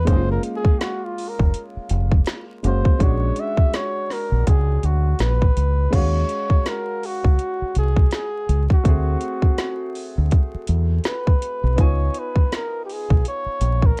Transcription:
0.05 0.37 F#1 loud
0.05 2.58 G#3 medium
0.05 2.59 A#3 medium
0.05 2.60 C#4 medium
0.05 0.31 C5 loud
0.05 kick loud
0.05 closed hi-hat medium
0.09 0.16 D#4 medium
0.16 2.64 F4 medium
0.32 0.43 A#4 medium
0.43 closed hi-hat medium
0.56 0.81 G#4 loud
0.65 kick medium
0.79 1.06 F#4 medium
0.79 snare loud
0.79 closed hi-hat medium
1.04 1.30 F4 medium
1.18 open hi-hat soft
1.29 1.66 A#4 medium
1.39 1.52 F1 medium
1.39 kick medium
1.54 closed hi-hat medium
1.77 muted fingered electric bass stroke soft
1.89 2.20 F1 loud
1.89 closed hi-hat medium
2.11 kick medium
2.26 snare loud
2.26 closed hi-hat medium
2.63 2.82 F#1 medium
2.63 2.97 G#3 soft
2.63 3.01 A#3 soft
2.63 2.98 C#4 soft
2.63 3.01 F#4 medium
2.63 closed hi-hat medium
2.67 3.04 C5 medium
2.85 kick loud
2.99 3.30 A#1 loud
2.99 5.88 G#3 medium
2.99 5.89 C#4 medium
2.99 5.89 D4 medium
2.99 kick loud
2.99 closed hi-hat medium
3.03 5.90 F#4 medium
3.03 3.41 C#5 loud
3.36 3.77 E5 loud
3.36 closed hi-hat medium
3.57 kick medium
3.73 4.14 C#5 loud
3.73 snare loud
3.73 closed hi-hat medium
4.10 4.48 A#4 medium
4.10 snare soft
4.10 open hi-hat soft
4.32 4.44 A#1 medium
4.47 4.77 C#2 medium
4.47 4.87 G#4 loud
4.47 kick medium
4.47 closed hi-hat medium
4.83 5.13 D2 medium
4.83 5.21 F#4 medium
4.83 closed hi-hat medium
5.19 5.49 A#1 medium
5.19 5.97 B4 loud
5.19 snare loud
5.19 closed hi-hat medium
5.42 kick loud
5.57 5.86 C#2 medium
5.57 closed hi-hat medium
5.90 6.23 D#2 loud
5.90 8.80 G#3 medium
5.90 8.81 C#4 medium
5.90 8.82 F5 medium
5.90 kick loud
5.90 closed hi-hat medium
5.90 crash medium
5.95 8.83 F#4 medium
5.95 6.70 C#5 loud
6.29 closed hi-hat medium
6.50 kick medium
6.66 7.07 A#4 loud
6.66 snare loud
6.66 closed hi-hat medium
7.03 7.77 F#4 loud
7.03 open hi-hat soft
7.24 7.37 C#2 medium
7.24 kick medium
7.39 closed hi-hat medium
7.62 muted fingered electric bass stroke soft
7.75 8.06 C2 medium
7.75 8.11 G#4 medium
7.75 closed hi-hat medium
7.96 kick medium
8.11 8.67 G#4 medium
8.11 snare medium
8.11 closed hi-hat medium
8.49 8.67 C#2 medium
8.49 closed hi-hat medium
8.70 10.14 F#4 medium
8.70 kick medium
8.84 9.15 D2 medium
8.84 11.73 A3 medium
8.84 11.74 C4 medium
8.84 11.75 F#4 medium
8.84 kick loud
8.84 closed hi-hat medium
8.88 11.76 G#4 medium
9.21 closed hi-hat medium
9.42 kick medium
9.58 snare loud
9.58 closed hi-hat medium
9.95 open hi-hat soft
10.18 10.30 D2 medium
10.31 kick medium
10.31 closed hi-hat medium
10.55 muted fingered electric bass stroke soft
10.67 10.98 E2 medium
10.67 closed hi-hat medium
11.04 snare loud
11.04 closed hi-hat medium
11.09 11.83 B4 medium
11.27 kick medium
11.42 closed hi-hat medium
11.64 11.78 B1 medium
11.76 12.08 C#2 medium
11.76 14.00 B3 medium
11.76 14.00 D#4 medium
11.76 14.00 F4 medium
11.76 kick loud
11.76 closed hi-hat medium
11.80 12.20 C#5 medium
11.80 14.00 G#5 medium
12.14 closed hi-hat medium
12.19 12.53 B4 medium
12.36 kick medium
12.52 12.83 A#4 medium
12.52 snare loud
12.52 closed hi-hat medium
12.85 12.94 G4 medium
12.89 13.27 G#4 medium
12.89 open hi-hat soft
13.10 13.22 B1 medium
13.10 kick medium
13.25 13.87 C#5 loud
13.25 closed hi-hat medium
13.46 muted fingered electric bass stroke soft
13.61 13.91 A#1 loud
13.61 closed hi-hat medium
13.82 14.00 A#4 medium
13.82 kick medium

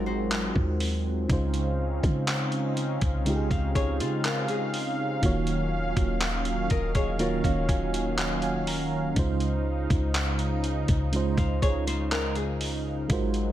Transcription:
0.00 0.52 G#1 loud
0.00 1.26 F#3 medium
0.00 0.87 G#3 medium
0.00 1.26 G#3 medium
0.00 1.25 C4 medium
0.00 0.88 D#4 medium
0.00 0.88 F4 medium
0.00 0.89 F#4 medium
0.00 0.89 A#4 medium
0.00 0.90 C5 medium
0.06 1.26 F#4 medium
0.06 1.25 C5 medium
0.32 clap loud
0.32 closed hi-hat medium
0.56 1.27 D#2 loud
0.56 kick medium
0.80 open hi-hat medium
1.28 2.00 C#2 loud
1.28 2.70 C#3 medium
1.28 2.71 G#3 medium
1.28 5.19 C4 medium
1.28 5.19 C#4 medium
1.28 5.19 D#4 medium
1.28 2.72 D#4 medium
1.28 2.72 F4 medium
1.28 13.06 F5 medium
1.28 kick loud
1.28 closed hi-hat medium
1.33 2.73 C5 loud
1.54 closed hi-hat medium
2.03 2.98 C#3 loud
2.03 kick loud
2.03 closed hi-hat medium
2.28 clap loud
2.28 closed hi-hat medium
2.52 closed hi-hat medium
2.77 closed hi-hat medium
3.01 3.49 C2 loud
3.01 kick loud
3.01 closed hi-hat medium
3.25 4.67 C#3 medium
3.25 4.68 G#3 medium
3.25 4.68 D#4 medium
3.25 4.69 F4 medium
3.25 closed hi-hat medium
3.29 3.34 G4 medium
3.36 4.72 G#4 loud
3.51 4.02 C#2 loud
3.51 3.74 C5 medium
3.51 3.74 F5 medium
3.51 kick loud
3.51 closed hi-hat soft
3.75 3.99 G#4 medium
3.75 3.99 C#5 medium
3.75 kick loud
3.75 closed hi-hat medium
4.00 4.47 C#3 medium
4.00 4.24 F4 medium
4.00 4.23 C5 medium
4.00 closed hi-hat medium
4.25 4.48 F4 medium
4.25 4.48 A#4 medium
4.25 clap loud
4.25 closed hi-hat medium
4.48 5.20 D#4 medium
4.48 5.19 G#4 medium
4.48 closed hi-hat soft
4.74 open hi-hat medium
5.21 5.94 D#1 loud
5.21 6.64 D#3 medium
5.21 9.12 D#3 medium
5.21 9.12 F#3 medium
5.21 6.64 A#3 medium
5.21 9.12 C#4 medium
5.21 6.65 F4 medium
5.21 6.65 F#4 medium
5.21 kick loud
5.21 closed hi-hat medium
5.26 6.66 C#5 medium
5.47 closed hi-hat medium
5.97 6.68 D#1 loud
5.97 kick loud
5.97 closed hi-hat medium
6.21 clap loud
6.21 closed hi-hat medium
6.45 closed hi-hat medium
6.70 7.41 D#1 loud
6.70 6.94 A#4 medium
6.70 6.94 D#5 medium
6.70 7.16 D#5 medium
6.70 kick medium
6.70 closed hi-hat medium
6.95 7.19 G#4 medium
6.95 7.18 C#5 medium
6.95 kick medium
6.95 closed hi-hat medium
7.18 8.60 D#3 medium
7.18 8.61 A#3 medium
7.18 8.61 F4 medium
7.18 7.43 F4 medium
7.18 8.62 F#4 medium
7.18 7.43 A#4 medium
7.18 7.22 C#5 medium
7.18 closed hi-hat medium
7.22 8.62 C#5 loud
7.44 9.12 D#1 loud
7.44 8.88 C#4 medium
7.44 8.88 F#4 medium
7.44 7.67 F5 medium
7.44 kick medium
7.44 closed hi-hat soft
7.69 8.15 G#5 medium
7.69 kick loud
7.69 closed hi-hat medium
7.94 closed hi-hat medium
8.18 8.41 F#5 medium
8.18 clap loud
8.18 closed hi-hat medium
8.42 8.66 G#5 medium
8.42 closed hi-hat soft
8.67 9.13 A#5 medium
8.67 open hi-hat medium
9.15 9.87 C#2 loud
9.15 10.57 C#3 medium
9.15 13.06 C#3 medium
9.15 10.58 G#3 medium
9.15 13.06 D#4 medium
9.15 10.58 D#4 medium
9.15 10.59 F4 medium
9.15 kick loud
9.15 closed hi-hat medium
9.19 10.59 C5 loud
9.40 closed hi-hat medium
9.90 10.85 C#2 loud
9.90 kick loud
9.90 closed hi-hat medium
10.15 clap loud
10.15 closed hi-hat medium
10.39 closed hi-hat medium
10.64 closed hi-hat medium
10.88 11.36 C#2 loud
10.88 kick loud
10.88 closed hi-hat medium
11.12 12.54 C#3 medium
11.12 12.54 G#3 medium
11.12 12.55 D#4 medium
11.12 12.55 F4 medium
11.12 closed hi-hat medium
11.16 12.56 C5 loud
11.38 13.06 C#2 loud
11.38 11.61 C5 medium
11.38 11.61 F5 medium
11.38 kick loud
11.38 closed hi-hat soft
11.62 11.86 G#4 medium
11.62 11.86 C#5 medium
11.62 kick loud
11.62 closed hi-hat medium
11.87 12.11 F4 medium
11.87 12.10 C5 medium
11.87 closed hi-hat medium
12.12 12.35 F4 medium
12.12 12.35 A#4 medium
12.12 clap loud
12.12 closed hi-hat medium
12.35 13.06 D#4 medium
12.35 13.06 G#4 medium
12.35 closed hi-hat soft
12.61 open hi-hat medium
13.08 13.52 G#1 loud
13.08 13.52 F#3 medium
13.08 13.52 G#3 medium
13.08 13.52 D#4 medium
13.08 13.52 F4 medium
13.08 13.52 F#4 medium
13.08 13.52 A#4 medium
13.08 kick loud
13.08 closed hi-hat medium
13.13 13.52 C5 medium
13.34 closed hi-hat medium

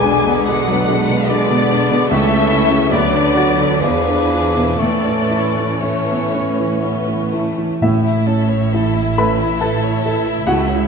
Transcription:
0.00 2.08 B1 soft
0.00 2.06 B2 soft
0.00 1.29 D3 soft
0.00 0.15 G#3 soft
0.00 2.06 G#3 soft
0.00 2.06 D4 soft
0.00 0.37 D4 soft
0.00 1.13 G#4 soft
0.00 2.07 B4 soft
0.00 0.46 G#5 medium
0.00 1.02 D6 soft
0.05 0.25 D4 soft
0.26 0.59 B2 soft
0.26 0.47 B3 soft
0.45 0.68 G#3 soft
0.45 0.81 G#3 soft
0.45 1.28 F#5 medium
0.68 0.88 F#3 soft
0.68 0.89 B3 soft
0.89 1.22 G#3 soft
0.89 1.10 D4 soft
1.10 1.42 B2 soft
1.10 1.31 B3 soft
1.29 2.09 D3 medium
1.29 1.63 G#3 soft
1.29 1.51 G#3 soft
1.29 2.09 G#4 soft
1.29 2.10 D5 medium
1.29 2.09 D6 soft
1.50 1.83 B2 soft
1.50 1.72 B3 soft
1.71 2.03 D4 soft
1.71 1.92 D4 soft
1.90 2.11 B2 soft
1.90 2.12 B3 soft
2.10 2.90 C#2 medium
2.10 2.91 C#3 medium
2.10 2.93 E3 soft
2.10 2.91 A3 soft
2.10 2.30 A3 soft
2.10 2.90 C#4 medium
2.10 2.93 A4 soft
2.10 2.90 E5 medium
2.10 2.88 C#6 soft
2.31 2.63 A3 soft
2.31 2.52 C#4 soft
2.51 2.71 E4 soft
2.51 2.84 E4 soft
2.71 2.92 C#3 soft
2.71 2.93 C#4 soft
2.90 3.80 D2 medium
2.90 3.79 D3 soft
2.90 3.79 F#3 soft
2.90 3.83 F#3 soft
2.90 3.81 B3 soft
2.90 3.12 B3 soft
2.90 3.36 B4 soft
2.90 3.80 B4 soft
2.90 3.82 D5 medium
2.90 3.80 D6 soft
3.13 3.35 D4 soft
3.13 3.50 D4 soft
3.34 3.58 F#4 soft
3.34 3.73 F#4 soft
3.34 3.79 A4 soft
3.58 3.83 D3 soft
3.58 3.82 D4 soft
3.80 4.80 E2 soft
3.80 7.60 E3 soft
3.80 4.80 F3 soft
3.80 4.04 G#3 soft
3.80 4.79 D4 soft
3.80 4.80 G#4 soft
3.80 4.79 G#4 soft
3.80 4.80 B4 medium
3.80 4.80 D6 soft
3.84 4.78 E2 medium
4.03 4.29 B3 soft
4.10 4.47 D4 soft
4.29 4.55 D4 soft
4.29 4.71 F4 soft
4.53 4.81 B2 soft
4.53 4.79 E4 soft
4.77 7.56 A2 soft
4.77 5.63 E3 soft
4.77 5.02 A3 soft
4.77 7.56 C#4 soft
4.77 5.69 A4 soft
4.77 5.80 A4 soft
4.77 5.79 D5 medium
4.77 5.79 C#6 soft
4.82 7.79 A2 soft
5.03 5.29 C#4 soft
5.07 5.46 C#4 soft
5.28 5.54 E4 soft
5.28 5.71 E4 soft
5.53 5.80 C#4 soft
5.58 5.98 E3 soft
5.79 7.44 E3 soft
5.79 6.28 A3 soft
5.79 6.23 C#4 soft
5.79 7.44 A4 soft
5.79 6.83 C#5 soft
5.79 7.43 C#6 soft
6.11 6.35 B3 soft
6.32 6.83 C#4 soft
6.32 6.75 C#4 soft
6.60 6.99 E3 soft
6.81 7.32 B3 soft
6.81 7.24 C#4 soft
7.08 7.48 E3 soft
7.32 7.81 A3 soft
7.32 7.73 E4 soft
7.58 7.82 E3 soft
7.80 10.42 A1 soft
7.80 9.14 A2 medium
7.80 10.42 A2 soft
7.80 10.43 A2 soft
7.80 8.02 C#4 soft
7.80 10.88 E4 soft
7.80 8.73 E4 soft
7.80 9.14 E5 soft
7.80 10.88 E5 soft
8.04 8.28 E4 soft
8.26 9.00 C#4 soft
8.26 8.50 A4 soft
8.48 8.72 C#5 soft
8.72 9.44 E4 soft
8.72 8.95 A4 soft
8.94 9.17 E4 soft
9.18 9.40 C#4 soft
9.18 9.61 A4 soft
9.18 9.58 B4 soft
9.18 9.58 B5 medium
9.40 9.61 E4 soft
9.61 9.83 A4 soft
9.61 10.04 A4 soft
9.61 10.04 B4 soft
9.61 10.42 A5 medium
9.83 10.04 C#5 soft
10.04 10.25 A4 soft
10.04 10.47 A4 soft
10.24 10.46 E4 soft
10.46 10.88 C#2 medium
10.46 10.67 A3 soft
10.46 10.88 F#4 soft
10.46 10.88 F#5 medium
10.67 10.88 C#4 soft

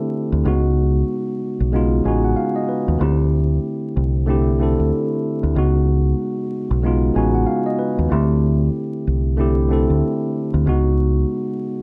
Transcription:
0.00 0.47 D3 medium
0.00 0.47 A3 medium
0.00 0.47 C4 medium
0.00 0.47 E4 medium
0.00 0.47 G4 medium
0.00 0.40 A4 medium
0.32 0.44 D2 medium
0.44 1.02 C#2 loud
0.44 1.65 C#3 medium
0.44 1.65 G#3 medium
0.44 1.66 B3 medium
0.44 1.66 D#4 medium
0.48 1.67 F#4 loud
1.60 2.00 B1 medium
1.72 2.02 C#3 medium
1.72 2.03 G#3 medium
1.72 2.03 B3 medium
1.72 2.04 D#4 medium
1.72 2.04 F4 medium
2.04 2.34 A1 medium
2.04 2.94 C#3 medium
2.04 2.95 G#3 medium
2.04 2.95 B3 medium
2.04 2.96 D#4 medium
2.04 2.96 F#4 medium
2.04 2.23 G#5 medium
2.24 2.36 F#5 medium
2.36 2.54 F5 medium
2.56 2.68 D#5 medium
2.69 2.98 B4 medium
2.88 2.99 D#2 medium
2.99 3.58 D2 loud
2.99 4.20 D3 medium
2.99 4.20 A3 medium
2.99 4.21 C4 medium
2.99 4.21 E4 medium
2.99 4.22 G4 medium
3.97 4.75 C2 medium
4.26 4.57 D3 medium
4.26 4.58 A3 medium
4.26 4.58 C4 medium
4.26 4.59 E4 medium
4.26 4.59 G4 medium
4.59 5.49 D3 medium
4.59 5.50 A3 medium
4.59 5.50 C4 medium
4.59 5.51 E4 medium
4.59 5.51 A4 medium
4.80 4.91 D2 medium
5.43 5.55 D2 medium
5.55 6.13 C#2 loud
5.55 6.75 C#3 medium
5.55 6.76 G#3 medium
5.55 6.76 B3 medium
5.55 6.77 D#4 medium
5.55 6.77 F#4 loud
6.71 7.11 B1 medium
6.82 7.13 C#3 medium
6.82 7.13 G#3 medium
6.82 7.14 B3 medium
6.82 7.14 D#4 medium
6.82 7.15 F4 medium
7.14 7.44 A1 medium
7.14 8.05 C#3 medium
7.14 8.05 G#3 medium
7.14 8.06 B3 medium
7.14 8.06 D#4 medium
7.14 8.07 F#4 medium
7.14 7.33 G#5 medium
7.35 7.47 F#5 medium
7.47 7.65 F5 medium
7.66 7.78 D#5 medium
7.79 8.09 B4 medium
7.99 8.10 D#2 medium
8.09 8.68 D2 loud
8.09 9.30 D3 medium
8.09 9.31 A3 medium
8.09 9.31 C4 medium
8.09 9.31 E4 medium
8.09 9.32 G4 medium
9.07 9.86 C2 medium
9.37 9.68 D3 medium
9.37 9.68 A3 medium
9.37 9.69 C4 medium
9.37 9.69 E4 medium
9.37 9.70 G4 medium
9.69 10.60 D3 medium
9.69 10.60 A3 medium
9.69 10.61 C4 medium
9.69 10.61 E4 medium
9.69 10.62 A4 medium
9.90 10.01 D2 medium
10.54 10.65 D2 medium
10.65 11.24 C#2 loud
10.65 11.82 C#3 medium
10.65 11.82 G#3 medium
10.65 11.82 B3 medium
10.65 11.82 D#4 medium
10.65 11.82 F#4 loud

